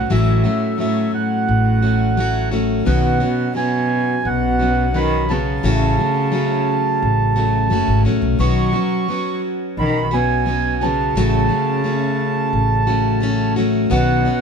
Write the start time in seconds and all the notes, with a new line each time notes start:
Already playing: B3 C#4 F#5
0.10 A1 A2 E3 F#3 A3 C#4 F#4 E5
0.44 F#3 A3 C#4 F#4
0.78 F#3 A3 C#4 F#4 E5
0.82 A2
1.14 A2 F#5
1.48 A1
1.82 F#3 A3 C#4 F#4
2.17 F#3 A3 C#4 F#4
2.51 F#3 A3 C#4 F#4
2.85 B1 B2 D#3 F#3 B3 C#4 F#4 F#5
3.20 F#3 B3 C#4 F#4
3.55 B2 F#3 B3 C#4 F#4 G#5
4.25 B1 B2 F#5
4.59 F#3 B3 C#4 F#4
4.94 D#3 F#3 B3 C#4 F#4 B5
5.29 C#3 F#3 B3 C#4 F#4 A5
5.63 A1 A2 E3 F#3 A3 C#4 F#4
5.97 F#3 A3 C#4 F#4
6.32 F#3 A3 C#4 F#4
7.02 A1
7.36 F#3 A3 C#4 F#4
7.70 F#1 F#3 A3 C#4 F#4
7.88 G#1
8.05 A1 F#3 A3 C#4 F#4
8.22 B1
8.39 B1 B2 D#3 F#3 B3 C#4 F#4 C#6
8.73 F#3 B3 C#4 F#4
9.08 F#3 B3 C#4 F#4
9.77 B1 D#3 B5
10.11 B2 F#3 B3 C#4 F#4 G#5
10.46 F#3 B3 C#4 F#4
10.81 C#3 F#3 B3 C#4 F#4 A5
11.15 A1 A2 E3 F#3 A3 C#4 F#4
11.49 F#3 A3 C#4 F#4
11.84 F#3 A3 C#4 F#4
12.53 A1
12.87 F#3 A3 C#4 F#4
13.21 F#3 A3 C#4 F#4
13.56 F#3 A3 C#4 F#4
13.90 B1 B2 D#3 F#3 B3 C#4 F#4 F#5
14.25 F#3 B3 C#4 F#4